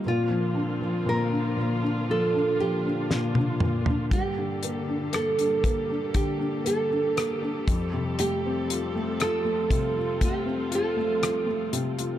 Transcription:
0.00 7.63 D3 medium
0.00 4.07 A#3 medium
0.00 2.05 C4 medium
0.00 4.07 F4 medium
0.04 1.04 A#2 medium
0.04 4.07 F3 medium
0.08 1.11 F4 medium
0.30 0.80 F3 soft
0.55 1.29 D4 soft
0.81 2.08 F3 soft
1.06 1.55 A#2 soft
1.06 2.05 A#4 medium
1.31 1.80 D4 soft
1.57 3.09 A#2 soft
1.82 2.33 D4 soft
2.08 2.59 F3 medium
2.08 4.09 D4 medium
2.08 2.60 A4 medium
2.34 2.84 D4 soft
2.60 4.08 F3 soft
2.60 3.12 G4 medium
2.85 3.36 D4 soft
3.11 3.61 A#2 soft
3.11 3.84 F4 medium
3.11 snare soft
3.35 3.86 D4 soft
3.35 high tom medium
3.60 4.11 A#2 soft
3.60 mid tom medium
3.86 4.11 D4 soft
3.86 floor tom medium
4.10 7.64 G2 medium
4.10 7.63 G3 medium
4.10 7.63 A#3 medium
4.10 9.66 G4 medium
4.10 5.10 G4 medium
4.10 12.19 A4 medium
4.10 kick medium
4.10 closed hi-hat medium
4.38 6.13 D3 soft
4.63 5.11 A#3 soft
4.63 closed hi-hat medium
4.88 5.37 D4 soft
5.13 5.63 A#3 soft
5.13 6.15 A4 medium
5.13 cross-stick medium
5.13 closed hi-hat medium
5.38 5.88 D4 soft
5.38 closed hi-hat soft
5.64 6.63 A#3 soft
5.64 kick medium
5.64 closed hi-hat medium
5.90 6.37 D4 soft
6.14 7.63 D3 soft
6.14 6.62 G4 medium
6.14 kick medium
6.14 closed hi-hat medium
6.39 6.89 D4 soft
6.65 7.15 A#3 soft
6.65 7.35 A4 medium
6.65 closed hi-hat medium
6.91 7.41 D4 soft
7.17 7.66 A#3 soft
7.17 cross-stick medium
7.17 closed hi-hat medium
7.35 7.64 G4 medium
7.42 7.67 D4 soft
7.68 11.70 F2 medium
7.68 12.19 F3 medium
7.68 12.19 G3 medium
7.68 12.19 C4 medium
7.68 kick medium
7.68 closed hi-hat medium
7.94 9.69 C3 soft
8.19 8.94 A3 soft
8.19 9.22 G4 medium
8.19 closed hi-hat medium
8.46 10.44 C4 soft
8.70 9.20 F4 soft
8.70 closed hi-hat medium
8.95 9.43 A3 soft
9.20 9.95 F4 medium
9.20 10.24 A4 medium
9.20 cross-stick medium
9.20 closed hi-hat medium
9.45 10.20 A3 soft
9.70 11.71 C3 medium
9.70 12.19 F4 medium
9.70 kick medium
9.70 closed hi-hat medium
9.97 10.70 F4 soft
10.21 10.95 A3 soft
10.21 10.75 G4 medium
10.21 kick medium
10.21 closed hi-hat medium
10.46 12.19 C4 soft
10.71 11.20 F4 soft
10.71 11.71 A4 medium
10.71 closed hi-hat medium
10.97 11.45 A3 soft
11.22 11.97 F4 soft
11.22 cross-stick medium
11.22 closed hi-hat medium
11.46 12.19 A3 soft
11.73 12.19 C3 medium
11.73 closed hi-hat medium
11.98 12.19 F4 soft
11.98 closed hi-hat soft

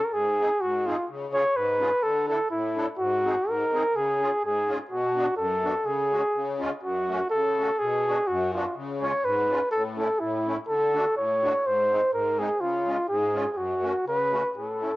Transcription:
0.04 0.15 A#4 medium
0.13 0.49 G#2 medium
0.13 0.62 G#4 loud
0.39 0.48 C4 medium
0.39 0.49 D#4 medium
0.39 0.49 G#4 medium
0.61 0.97 G#2 medium
0.61 0.88 F#4 medium
0.86 0.96 C4 medium
0.86 0.96 D#4 soft
0.86 1.08 F4 medium
0.86 0.96 G#4 medium
1.09 1.44 C#3 medium
1.34 1.43 C#4 medium
1.34 1.43 F4 medium
1.34 1.43 G#4 medium
1.34 1.58 C#5 loud
1.56 1.91 G#2 medium
1.56 2.04 B4 medium
1.80 1.89 C#4 medium
1.80 1.90 F4 medium
1.80 1.90 G#4 medium
2.03 2.38 D3 medium
2.03 2.27 A4 medium
2.28 2.37 D4 soft
2.28 2.38 E4 soft
2.28 2.49 A4 medium
2.28 2.38 A4 medium
2.51 2.87 A2 medium
2.51 2.85 E4 medium
2.76 2.86 D4 medium
2.76 2.86 E4 soft
2.76 2.86 A4 medium
2.99 3.35 G#2 medium
2.99 3.50 F#4 medium
3.24 3.34 C4 soft
3.24 3.35 D#4 medium
3.24 3.35 G#4 medium
3.47 3.83 G#2 medium
3.47 3.98 A#4 medium
3.73 3.83 C4 medium
3.73 3.83 D#4 soft
3.73 3.83 G#4 medium
3.95 4.31 C#3 medium
3.95 4.43 G#4 medium
4.21 4.30 C#4 medium
4.21 4.31 F4 soft
4.21 4.31 G#4 medium
4.43 4.79 G#2 medium
4.43 4.78 G#4 medium
4.68 4.78 C#4 medium
4.68 4.78 F4 medium
4.68 4.78 G#4 medium
4.91 5.26 B2 medium
4.91 5.35 F#4 medium
5.16 5.26 B3 medium
5.16 5.26 D4 medium
5.16 5.26 F#4 medium
5.37 5.74 F#2 medium
5.37 5.87 A4 medium
5.63 5.73 B3 medium
5.63 5.73 D4 soft
5.63 5.74 F#4 medium
5.85 6.22 C#3 medium
5.85 6.61 G#4 medium
6.11 6.21 G#3 soft
6.11 6.22 C#4 medium
6.11 6.22 F#4 medium
6.34 6.71 C#3 medium
6.59 6.70 G#3 medium
6.59 6.70 C#4 medium
6.59 6.71 F4 medium
6.83 7.20 F#2 soft
6.83 7.29 F#4 medium
7.09 7.20 A3 medium
7.09 7.20 C#4 soft
7.09 7.20 F#4 medium
7.31 7.70 C#3 medium
7.31 7.81 A4 medium
7.58 7.69 A3 medium
7.58 7.69 C#4 soft
7.58 7.70 F#4 medium
7.79 8.18 B2 medium
7.79 8.29 G#4 medium
8.07 8.17 B3 medium
8.07 8.18 D4 soft
8.07 8.18 F#4 medium
8.27 8.65 F#2 medium
8.27 8.53 F#4 medium
8.54 8.64 B3 medium
8.54 8.65 D4 medium
8.54 8.75 F4 medium
8.54 8.65 F#4 medium
8.76 9.12 C#3 medium
9.01 9.12 G#3 medium
9.01 9.12 C#4 soft
9.01 9.12 F4 medium
9.01 9.26 C#5 medium
9.24 9.60 G#2 medium
9.24 9.71 B4 medium
9.50 9.59 G#3 medium
9.50 9.60 C#4 soft
9.50 9.60 F4 medium
9.71 10.09 A2 medium
9.71 9.83 A4 medium
9.97 10.07 A3 medium
9.97 10.08 C#4 soft
9.97 10.08 E4 medium
9.97 10.21 A4 medium
10.20 10.57 A2 medium
10.20 10.57 E4 medium
10.46 10.56 A3 medium
10.46 10.56 C#4 medium
10.46 10.57 E4 medium
10.68 11.05 D3 medium
10.68 11.14 A4 loud
10.93 11.04 A3 soft
10.93 11.04 D4 medium
10.93 11.05 F#4 medium
11.16 11.53 A2 medium
11.16 11.68 C#5 medium
11.42 11.53 A3 medium
11.42 11.53 D4 soft
11.42 11.53 F#4 medium
11.65 12.01 G#2 medium
11.65 12.13 C5 loud
11.91 12.01 G#3 medium
11.91 12.01 C4 medium
11.91 12.01 D#4 medium
12.13 12.49 G#2 medium
12.13 12.41 A#4 medium
12.38 12.48 G#3 medium
12.38 12.48 C4 soft
12.38 12.49 D#4 medium
12.38 12.62 G#4 medium
12.61 12.97 C#3 medium
12.61 13.08 F4 medium
12.86 12.96 G#3 medium
12.86 12.96 C#4 medium
12.86 12.97 F4 medium
13.09 13.45 G#2 medium
13.09 13.52 G#4 medium
13.34 13.44 G#3 medium
13.34 13.44 C#4 medium
13.34 13.45 F4 medium
13.52 13.59 G#4 medium
13.56 13.93 F#2 medium
13.56 14.06 F#4 medium
13.82 13.92 A3 medium
13.82 13.93 C#4 medium
13.82 13.93 F#4 medium
14.06 14.43 C#3 medium
14.06 14.53 B4 medium
14.31 14.42 A3 medium
14.31 14.42 C#4 medium
14.31 14.42 F#4 medium
14.55 14.92 A2 soft
14.55 14.96 A4 medium
14.81 14.91 A3 soft
14.81 14.91 C#4 soft
14.81 14.92 E4 soft

